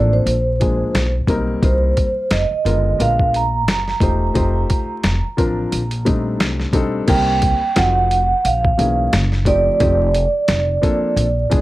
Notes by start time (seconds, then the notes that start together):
Already playing: A1 F3 A#3 C4 D4 A4 D5
0.13 C5
0.26 A#1, closed hi-hat
0.60 F3 G#3 A#3 D4 G#4, kick, closed hi-hat
0.94 B1, snare, closed hi-hat
1.27 B1 G3 A#3 C4 D#4 A#4, kick, closed hi-hat
1.62 C2 G3 A#3 C4 D#4 A#4 C5, kick, closed hi-hat
1.97 kick, closed hi-hat
2.31 F1 D#5, snare, closed hi-hat
2.51 muted upright bass stroke
2.65 F#1 D3 G#3 B3 F4 A#4, closed hi-hat
2.98 A#1 G#3 B3 D4 F4 A#4 F5, closed hi-hat
3.19 kick
3.34 A#5, closed hi-hat
3.68 F#1, snare, closed hi-hat
3.88 snare
4.00 E1 A3 D#4 F4 G4 C5, kick, closed hi-hat
4.34 F1 A3 D#4 F4 G4 C5, kick, closed hi-hat
4.70 kick, closed hi-hat
5.03 F1, snare, closed hi-hat
5.24 muted upright bass stroke
5.37 A1 F3 C4 D4 F4 A#4, kick, closed hi-hat
5.72 A#1, closed hi-hat
5.91 closed hi-hat
6.05 G3 A3 C4 D4 D#4, kick, closed hi-hat
6.40 C2, snare, closed hi-hat
6.60 snare
6.73 B1 G3 C4 D4 D#4 A4, kick, closed hi-hat
7.07 C2 G3 A#3 C4 D#4 A#4 G5, kick, closed hi-hat, crash
7.42 kick, closed hi-hat
7.76 F1 F3 A3 C4 D#4 F#4 F#5, snare, closed hi-hat
8.11 closed hi-hat
8.45 A#1 F5, closed hi-hat
8.65 kick
8.77 B1 E3 F#3 A#3 C#4 G#4, closed hi-hat
9.13 F#1, snare, closed hi-hat
9.32 snare
9.45 F3 A3 C4 D#4 G4 D5, kick, closed hi-hat
9.80 F1 F3 A3 C4 D#4 G4, kick, closed hi-hat
10.14 closed hi-hat
10.48 F1, snare, closed hi-hat
10.82 F3 A#3 C4 D4 A4, kick, closed hi-hat
11.17 A#1, closed hi-hat
11.50 C2 F3 G#3 B3 D4 G#4, kick, closed hi-hat